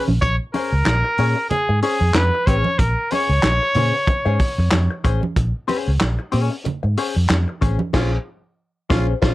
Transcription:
0.00 0.11 C#4 medium
0.08 0.20 A#1 medium
0.08 muted hollow-body jazz guitar stroke soft
0.08 high conga medium
0.22 0.37 A#1 loud
0.22 0.36 C#5 loud
0.22 kick loud
0.22 closed hi-hat medium
0.22 muted conga medium
0.54 0.72 C#4 medium
0.54 0.73 G#4 medium
0.54 1.46 A#4 loud
0.54 0.73 C5 medium
0.54 open hi-hat medium
0.54 muted conga medium
0.72 0.84 C#2 medium
0.85 1.02 A#1 loud
0.85 snare loud
0.85 clap medium
0.85 closed hi-hat medium
0.85 high conga medium
1.04 muted hollow-body jazz guitar stroke soft
1.18 1.34 A#2 loud
1.18 1.36 C#4 medium
1.18 1.36 G#4 medium
1.18 1.35 C#5 loud
1.18 open hi-hat medium
1.18 muted conga soft
1.36 muted hollow-body jazz guitar stroke medium
1.50 1.80 G#4 loud
1.50 muted fingered electric bass stroke soft
1.50 muted hollow-body jazz guitar stroke soft
1.50 closed hi-hat medium
1.50 muted conga medium
1.50 low conga medium
1.69 1.81 G#2 medium
1.69 muted hollow-body jazz guitar stroke medium
1.82 2.01 C#4 medium
1.82 2.17 G#4 medium
1.82 2.01 G#4 medium
1.82 2.01 C5 medium
1.82 open hi-hat medium
2.01 2.12 F2 loud
2.01 muted hollow-body jazz guitar stroke medium
2.14 2.30 F2 medium
2.14 2.48 B4 loud
2.14 muted hollow-body jazz guitar stroke soft
2.14 snare loud
2.14 clap loud
2.14 clap medium
2.14 closed hi-hat medium
2.14 high conga medium
2.34 muted hollow-body jazz guitar stroke medium
2.47 2.62 A1 loud
2.47 2.69 C#4 medium
2.47 2.65 G#4 medium
2.47 2.65 C5 medium
2.47 2.80 C#5 loud
2.47 kick loud
2.47 closed hi-hat medium
2.64 muted hollow-body jazz guitar stroke soft
2.64 high conga medium
2.79 2.94 A#1 loud
2.79 3.13 A#4 medium
2.79 kick loud
2.79 closed hi-hat medium
2.79 muted conga medium
3.11 3.29 C#4 medium
3.11 3.30 G#4 loud
3.11 5.05 C#5 loud
3.11 3.30 C#5 loud
3.11 open hi-hat medium
3.11 muted conga medium
3.29 3.41 C#2 medium
3.43 3.58 A#1 medium
3.43 snare loud
3.43 clap medium
3.43 closed hi-hat medium
3.43 high conga medium
3.62 muted hollow-body jazz guitar stroke soft
3.74 3.90 A#2 loud
3.74 3.94 C#4 medium
3.74 3.94 G#4 medium
3.74 3.94 C5 loud
3.74 open hi-hat medium
3.74 muted conga soft
3.74 low conga loud
3.95 muted hollow-body jazz guitar stroke medium
4.07 muted fingered electric bass stroke soft
4.07 muted hollow-body jazz guitar stroke soft
4.07 kick loud
4.07 closed hi-hat medium
4.07 muted conga medium
4.25 4.38 G#2 medium
4.25 4.39 C#4 medium
4.25 4.40 G#4 medium
4.25 4.40 C5 medium
4.39 muted hollow-body jazz guitar stroke soft
4.39 kick loud
4.39 open hi-hat medium
4.58 4.70 F2 loud
4.58 muted hollow-body jazz guitar stroke soft
4.71 4.87 F2 loud
4.71 muted hollow-body jazz guitar stroke medium
4.71 snare loud
4.71 clap medium
4.71 clap loud
4.71 closed hi-hat medium
4.71 high conga medium
4.90 muted hollow-body jazz guitar stroke soft
5.04 5.20 A1 medium
5.04 5.22 C#4 medium
5.04 5.22 G#4 medium
5.04 5.21 C5 loud
5.04 kick loud
5.04 closed hi-hat medium
5.22 muted hollow-body jazz guitar stroke soft
5.22 high conga medium
5.36 5.52 A#1 loud
5.36 kick loud
5.36 closed hi-hat medium
5.36 muted conga medium
5.68 5.90 C#4 medium
5.68 5.90 G#4 medium
5.68 5.90 C5 medium
5.68 open hi-hat medium
5.68 muted conga medium
5.88 5.99 C#2 medium
6.00 6.16 A#1 medium
6.00 snare loud
6.00 clap medium
6.00 closed hi-hat medium
6.00 high conga medium
6.19 muted hollow-body jazz guitar stroke medium
6.32 6.48 A#2 loud
6.32 6.54 C#4 medium
6.32 6.50 G#4 medium
6.32 6.50 C#5 loud
6.32 open hi-hat medium
6.32 muted conga soft
6.51 muted hollow-body jazz guitar stroke medium
6.64 muted hollow-body jazz guitar stroke soft
6.64 muted fingered electric bass stroke soft
6.64 closed hi-hat medium
6.64 muted conga medium
6.64 low conga medium
6.83 6.95 G#2 medium
6.83 muted hollow-body jazz guitar stroke medium
6.97 7.15 C#4 medium
6.97 7.15 G#4 medium
6.97 7.15 C5 medium
6.97 open hi-hat loud
7.16 7.28 F2 medium
7.16 muted hollow-body jazz guitar stroke medium
7.29 7.45 F2 medium
7.29 muted hollow-body jazz guitar stroke soft
7.29 snare loud
7.29 clap loud
7.29 closed hi-hat medium
7.29 high conga medium
7.48 muted hollow-body jazz guitar stroke soft
7.61 7.77 A1 loud
7.61 7.79 C#4 medium
7.61 7.79 G#4 medium
7.61 7.78 C5 medium
7.61 kick medium
7.61 closed hi-hat medium
7.79 muted hollow-body jazz guitar stroke medium
7.79 high conga medium
7.93 8.16 A#1 loud
7.93 8.16 C#4 loud
7.93 8.11 F4 medium
7.93 8.16 G#4 loud
7.93 8.17 C5 loud
7.93 kick loud
7.93 snare loud
7.93 crash medium
8.90 9.13 A#1 loud
8.90 9.12 C#4 loud
8.90 9.07 F4 loud
8.90 9.13 G#4 medium
8.90 9.13 C5 loud
8.90 kick loud
8.90 snare loud
9.22 9.34 A#1 medium
9.22 9.34 C#4 medium
9.22 9.34 F4 loud
9.22 9.34 G#4 medium
9.22 9.34 C5 loud
9.22 kick loud
9.22 snare loud

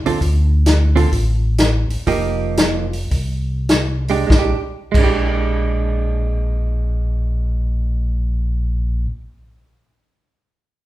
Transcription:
0.04 0.12 C2 soft
0.04 0.19 D3 medium
0.04 0.19 C4 medium
0.04 0.19 F4 medium
0.04 0.19 A4 medium
0.04 open hi-hat soft
0.21 1.07 D2 medium
0.21 kick soft
0.21 open hi-hat soft
0.66 snare medium
0.66 closed hi-hat medium
0.96 1.09 D3 medium
0.96 1.09 C4 medium
0.96 1.09 F4 medium
0.96 1.10 A4 medium
0.96 open hi-hat soft
1.12 1.86 A1 medium
1.12 kick soft
1.12 open hi-hat soft
1.58 snare medium
1.58 closed hi-hat medium
1.88 1.97 A1 soft
1.88 open hi-hat soft
2.07 3.07 F1 medium
2.07 2.85 F3 medium
2.07 2.86 A#3 medium
2.07 2.86 D#4 medium
2.07 2.86 G4 medium
2.07 kick soft
2.07 open hi-hat soft
2.57 snare medium
2.57 closed hi-hat medium
2.93 open hi-hat soft
3.11 4.25 C2 medium
3.11 kick soft
3.11 open hi-hat soft
3.69 snare medium
3.69 closed hi-hat soft
4.08 4.26 G#3 soft
4.08 4.28 D4 medium
4.08 4.28 G4 medium
4.08 open hi-hat soft
4.27 4.53 A#1 medium
4.27 4.53 G#3 medium
4.27 kick medium
4.27 snare medium
4.34 4.57 D4 medium
4.39 4.59 G4 medium
4.92 9.07 A#1 medium
4.92 9.09 G#3 medium
4.92 kick medium
4.92 crash medium
4.99 9.16 D4 medium
5.04 9.20 G4 medium

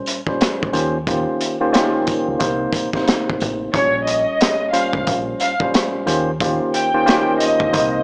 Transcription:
0.00 0.19 A#2 medium
0.00 0.19 G3 medium
0.00 0.19 C#4 medium
0.00 0.19 C5 loud
0.06 closed hi-hat medium
0.06 sleigh bells medium
0.27 0.74 A#2 medium
0.27 0.74 G3 medium
0.27 0.72 C#4 medium
0.27 0.72 C5 loud
0.27 kick medium
0.41 cross-stick medium
0.41 snare loud
0.41 closed hi-hat medium
0.41 sleigh bells medium
0.63 kick loud
0.73 1.25 D#2 medium
0.73 0.96 D#3 medium
0.73 0.97 A#3 medium
0.73 0.97 C#4 medium
0.73 0.97 F4 medium
0.73 0.97 G4 medium
0.73 0.97 C5 loud
0.73 closed hi-hat medium
0.73 sleigh bells medium
1.07 1.56 D#3 medium
1.07 1.56 A#3 medium
1.07 1.56 C#4 medium
1.07 1.57 F4 medium
1.07 1.57 G4 medium
1.07 1.57 C5 loud
1.07 kick loud
1.07 closed hi-hat medium
1.07 sleigh bells soft
1.41 closed hi-hat medium
1.41 sleigh bells medium
1.60 1.71 D#3 medium
1.60 1.71 A#3 medium
1.60 1.71 C#4 medium
1.60 1.71 F4 medium
1.60 1.72 G4 medium
1.60 1.72 C5 loud
1.72 2.40 D#3 medium
1.72 2.38 A#3 medium
1.72 2.40 C#4 medium
1.72 2.40 F4 medium
1.72 2.40 G4 medium
1.72 2.39 C5 loud
1.72 snare loud
1.72 closed hi-hat medium
1.72 sleigh bells soft
1.76 cross-stick medium
2.07 kick medium
2.07 closed hi-hat medium
2.07 sleigh bells medium
2.28 2.38 C#2 medium
2.39 2.66 C2 loud
2.39 2.89 C3 loud
2.39 2.89 A#3 medium
2.39 2.89 D#4 medium
2.39 2.89 C5 loud
2.39 kick medium
2.39 closed hi-hat medium
2.39 sleigh bells medium
2.73 kick loud
2.73 closed hi-hat medium
2.73 sleigh bells medium
2.93 3.69 C3 medium
2.93 3.69 A#3 medium
2.93 3.69 D#4 medium
2.93 3.69 C5 loud
2.93 kick medium
2.93 snare soft
3.08 cross-stick medium
3.08 snare loud
3.08 closed hi-hat medium
3.08 sleigh bells medium
3.30 kick loud
3.40 3.67 A1 medium
3.40 kick medium
3.40 closed hi-hat medium
3.40 sleigh bells medium
3.74 4.25 A#1 loud
3.74 4.68 A#2 medium
3.74 4.68 G3 medium
3.74 4.69 C#4 medium
3.74 4.04 C#5 loud
3.74 4.69 C#5 loud
3.74 kick loud
3.74 closed hi-hat medium
3.74 sleigh bells soft
4.05 4.69 D#5 medium
4.05 closed hi-hat medium
4.05 sleigh bells medium
4.40 cross-stick medium
4.40 snare loud
4.40 closed hi-hat loud
4.40 sleigh bells medium
4.72 5.52 A#2 medium
4.72 5.52 G3 medium
4.72 5.52 C#4 medium
4.72 5.53 C5 loud
4.72 5.03 F5 medium
4.72 closed hi-hat medium
4.72 sleigh bells medium
4.93 5.03 C#2 medium
4.93 kick medium
5.07 5.33 A#1 loud
5.07 kick loud
5.07 closed hi-hat medium
5.07 sleigh bells medium
5.40 5.59 F5 medium
5.40 closed hi-hat medium
5.40 sleigh bells medium
5.60 6.07 A#2 loud
5.60 6.07 G3 medium
5.60 6.05 C#4 medium
5.60 6.06 C5 loud
5.60 kick loud
5.74 cross-stick medium
5.74 snare loud
5.74 closed hi-hat loud
5.74 sleigh bells medium
6.06 6.58 D#2 loud
6.06 6.30 D#3 loud
6.06 6.30 A#3 medium
6.06 6.30 C#4 medium
6.06 6.30 F4 medium
6.06 6.30 G4 medium
6.06 6.30 C5 loud
6.06 closed hi-hat medium
6.06 sleigh bells medium
6.40 6.90 D#3 medium
6.40 6.90 A#3 medium
6.40 6.90 C#4 medium
6.40 6.90 F4 medium
6.40 6.90 G4 medium
6.40 6.90 C5 loud
6.40 kick loud
6.40 closed hi-hat medium
6.40 sleigh bells soft
6.74 7.37 G5 medium
6.74 closed hi-hat medium
6.74 sleigh bells medium
6.94 7.04 D#3 medium
6.94 7.04 A#3 medium
6.94 7.04 C#4 medium
6.94 7.05 F4 medium
6.94 7.05 G4 medium
6.94 7.05 C5 loud
7.05 7.73 D#3 loud
7.05 7.71 A#3 medium
7.05 7.73 C#4 medium
7.05 7.73 F4 medium
7.05 7.73 G4 medium
7.05 7.72 C5 loud
7.05 snare loud
7.05 closed hi-hat loud
7.05 sleigh bells medium
7.10 cross-stick medium
7.40 8.03 D#5 medium
7.40 closed hi-hat medium
7.40 sleigh bells medium
7.60 7.70 C#2 medium
7.60 kick medium
7.72 7.99 C2 loud
7.72 8.03 C3 loud
7.72 8.03 A#3 medium
7.72 8.03 D#4 medium
7.72 8.03 C5 loud
7.72 kick loud
7.72 closed hi-hat medium
7.72 sleigh bells medium

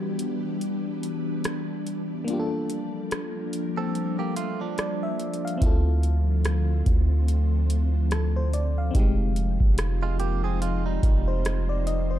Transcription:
0.00 2.25 E3 medium
0.00 2.25 G3 medium
0.00 2.22 B3 medium
0.00 2.25 B3 medium
0.00 2.24 D4 medium
0.00 5.58 D4 medium
0.00 2.25 F#4 medium
0.00 2.27 G4 medium
0.19 closed hi-hat medium
0.61 closed hi-hat medium
1.03 closed hi-hat medium
1.44 cross-stick loud
1.44 closed hi-hat medium
1.86 closed hi-hat medium
2.24 8.91 F3 medium
2.24 5.58 G3 medium
2.24 4.72 A#3 medium
2.24 5.58 A#3 medium
2.24 4.74 D4 medium
2.24 closed hi-hat medium
2.30 4.75 F4 medium
2.30 2.38 G4 medium
2.39 4.80 A4 medium
2.70 closed hi-hat medium
3.11 cross-stick loud
3.11 closed hi-hat medium
3.53 closed hi-hat medium
3.77 4.17 C4 medium
3.77 4.17 A4 medium
3.95 closed hi-hat medium
4.19 4.36 A#3 medium
4.19 4.36 G4 medium
4.36 4.60 A3 medium
4.36 4.59 F4 medium
4.36 closed hi-hat medium
4.61 5.58 F3 medium
4.61 5.58 D4 medium
4.78 5.01 D5 medium
4.78 cross-stick loud
4.78 closed hi-hat medium
5.03 5.42 E5 medium
5.20 closed hi-hat medium
5.34 closed hi-hat medium
5.45 5.84 F5 medium
5.45 closed hi-hat medium
5.58 8.89 C4 medium
5.58 8.90 E4 medium
5.58 kick loud
5.62 6.83 D2 loud
5.62 8.92 D3 medium
5.62 8.92 A3 medium
5.62 8.92 C4 medium
5.62 8.92 F4 medium
5.62 closed hi-hat medium
5.66 8.10 A4 medium
6.03 closed hi-hat medium
6.45 cross-stick loud
6.45 closed hi-hat medium
6.86 8.91 D2 loud
6.86 kick medium
6.86 closed hi-hat medium
7.28 closed hi-hat medium
7.70 closed hi-hat medium
8.11 8.35 A4 medium
8.11 cross-stick loud
8.11 closed hi-hat medium
8.36 8.53 C5 medium
8.53 8.76 D5 medium
8.53 closed hi-hat medium
8.78 9.17 F5 medium
8.91 12.19 F3 medium
8.91 11.39 C4 medium
8.91 12.19 C4 medium
8.91 11.40 D#4 medium
8.91 12.19 D#4 medium
8.91 12.19 F4 medium
8.91 kick loud
8.91 closed hi-hat medium
8.95 9.58 F1 loud
8.95 11.42 G4 medium
8.99 11.43 G#3 medium
9.36 closed hi-hat medium
9.60 10.99 F1 loud
9.60 kick loud
9.78 cross-stick loud
9.78 closed hi-hat medium
10.03 10.19 G#3 medium
10.03 10.19 F4 medium
10.20 10.43 A#3 medium
10.20 10.43 G4 medium
10.20 closed hi-hat medium
10.44 10.61 C4 medium
10.44 10.61 G#4 medium
10.62 10.85 G#3 medium
10.62 10.85 F4 medium
10.62 closed hi-hat medium
10.86 12.07 G3 medium
10.86 12.07 D#4 medium
11.03 12.19 F1 loud
11.03 kick loud
11.03 closed hi-hat medium
11.28 11.67 C5 medium
11.45 cross-stick loud
11.45 closed hi-hat medium
11.69 11.86 D5 medium
11.87 12.10 D#5 medium
11.87 closed hi-hat medium
12.11 12.19 C5 medium

